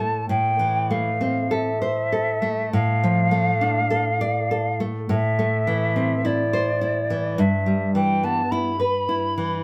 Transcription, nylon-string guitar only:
0.00 0.25 A2 medium
0.00 0.47 A3 medium
0.00 0.16 A4 soft
0.29 2.68 A2 medium
0.59 1.09 E3 soft
0.91 1.39 A3 medium
1.21 1.69 C4 medium
1.51 1.81 A4 medium
1.82 2.30 C5 medium
2.12 2.61 A4 medium
2.42 2.72 A3 soft
2.73 5.06 A2 medium
3.04 3.51 F3 soft
3.31 3.79 A3 medium
3.61 4.09 D4 soft
3.90 4.38 A4 medium
4.21 4.68 D5 medium
4.51 4.98 A4 medium
4.80 5.09 A3 medium
5.09 7.34 A2 medium
5.39 5.85 A3 soft
5.67 6.13 E3 medium
5.96 6.41 C4 soft
6.25 6.70 E4 medium
6.53 6.98 C5 medium
6.81 7.27 E4 medium
7.10 7.38 E3 medium
7.38 9.63 G2 medium
7.66 8.12 G3 soft
7.95 8.40 E3 soft
8.23 8.69 B3 medium
8.52 8.79 E4 medium
8.80 9.26 B4 soft
9.09 9.56 E4 medium
9.38 9.63 E3 soft

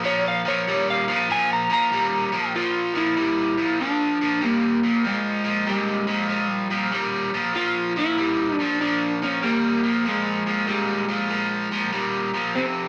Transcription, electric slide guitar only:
0.05 0.25 C#5 loud
0.28 0.47 F5 medium
0.48 0.87 C#5 medium
0.90 1.29 F5 loud
1.32 1.51 G#5 loud
1.53 1.72 A#5 medium
1.73 2.53 A#5 loud
2.56 2.93 F4 loud
2.97 3.81 E4 loud
3.81 4.44 D4 loud
4.44 5.06 A#3 medium
5.07 5.69 G#3 medium
5.70 6.49 G#3 medium
6.49 6.90 G3 medium
7.56 7.98 F4 loud
7.98 8.54 E4 loud
8.54 8.77 D4 loud
8.81 9.23 D4 medium
9.24 9.45 C#4 medium
9.44 10.08 A#3 medium
10.08 10.69 G#3 medium
10.70 11.90 G#3 medium
12.55 12.64 C4 medium

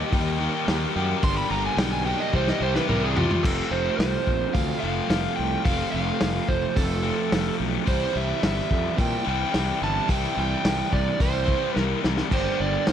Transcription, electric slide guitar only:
0.00 0.64 D#5 loud
1.24 1.37 C6 loud
1.37 1.50 B5 loud
1.51 1.64 A#5 medium
1.66 1.78 G#5 loud
1.80 1.91 G5 medium
1.92 2.05 G#5 loud
2.05 2.19 G5 medium
2.20 2.33 D#5 loud
2.35 2.47 C5 loud
2.49 2.61 D#5 medium
2.63 2.75 C5 loud
2.76 2.89 B4 medium
2.89 3.02 A#4 loud
3.05 3.17 G#4 loud
3.18 3.44 F4 loud
3.43 3.72 A4 medium
3.71 3.97 C5 medium
3.98 4.55 C5 medium
4.54 4.79 F5 medium
4.80 5.36 F5 medium
5.36 5.62 G5 loud
5.65 5.91 F5 loud
5.92 6.49 F5 loud
6.49 6.77 C5 medium
6.76 7.55 A4 medium
7.88 8.16 C5 medium
8.17 8.43 E5 medium
8.44 8.95 E5 medium
9.01 9.28 G5 loud
9.29 9.83 G5 loud
9.84 10.11 A5 loud
10.12 10.39 G5 loud
10.40 10.95 G5 loud
10.93 11.18 D5 medium
11.21 11.78 C5 medium
11.78 12.00 A#4 medium
12.34 12.58 C5 medium
12.60 12.85 D5 medium
12.88 12.93 D5 medium

